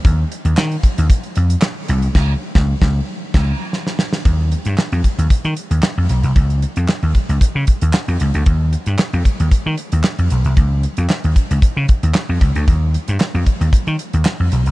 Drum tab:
CC |----------------|x--------x------|----------------|----------------|
HH |x-xx-xxxxxxx--xx|----------------|x-xx-xxxxxxx--xx|xxxx-xxxx-xx-xxx|
CP |----x-------x---|----------------|----x-------x---|----x-------x---|
SD |----o-------o---|o--o-o---o--oooo|----o-------o---|----o-------o---|
BD |o-----o-o-------|o--o-o---o------|o-----o-o-------|o-----o-o-o-----|

CC |----------------|----------------|----------------|
HH |x-xx-xxxx-xx-xxx|x-xx-xxxx-xx--xx|x-xx-xxxxxxx--xx|
CP |----x-------x---|----x-------x---|----x-------x---|
SD |----o-------o---|----o-------o---|----o-------o---|
BD |o-----o-o-------|o-----o-o-o---o-|o-----o-o-------|